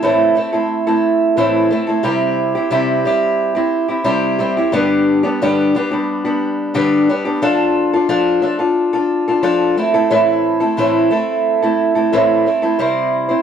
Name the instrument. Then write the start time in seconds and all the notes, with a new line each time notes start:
steel-string acoustic guitar
0.02 A2 E3 A3 C4 E4 A4
0.35 A3 C4 E4 A4
0.53 A3 C4 E4 A4
0.87 A3 C4 E4 A4
1.37 A2 E3 A3 C4 E4 A4
1.71 A3 C4 E4 A4
1.87 A3 C4 E4 A4
2.03 C3 G3 C4 E4 G4
2.55 C4 E4 G4
2.71 C3 G3 C4 E4 G4
3.05 G3 C4 E4 G4
3.55 C4 E4 G4
3.88 C4 E4 G4
4.04 C3 G3 C4 E4 G4
4.39 G3 C4 E4 G4
4.57 C4 E4 G4
4.72 G2 D3 G3 B3 D4 G4
5.23 G3 B3 D4 G4
5.42 G2 D3 G3 B3 D4 G4
5.75 G3 B3 D4 G4
5.91 G3 B3 D4 G4
6.25 G3 B3 D4 G4
6.74 G2 D3 G3 B3 D4 G4
7.09 G3 B3 D4 G4
7.25 G3 B3 D4 G4
7.42 F3 D4 F4 A4
7.93 D4 F4 A4
8.09 F3 D4 F4 A4
8.42 F3 D4 F4 A4
8.59 D4 F4 A4
8.93 D4 F4 A4
9.28 D4 F4 A4
9.43 F3 D4 F4 A4
9.77 A3 C4 E4 A4
9.94 A3 C4 E4 A4
10.10 A2 E3 A3 C4 E4 A4
10.60 A3 C4 E4 A4
10.77 A2 E3 A3 C4 E4 A4
11.10 A3 C4 E4 A4
11.62 A3 C4 E4 A4
11.95 A3 C4 E4 A4
12.13 A2 E3 A3 C4 E4 A4
12.46 A3 C4 E4 A4
12.62 A3 C4 E4 A4
12.79 C3 G3 C4 E4 C5
13.29 C4 E4 C5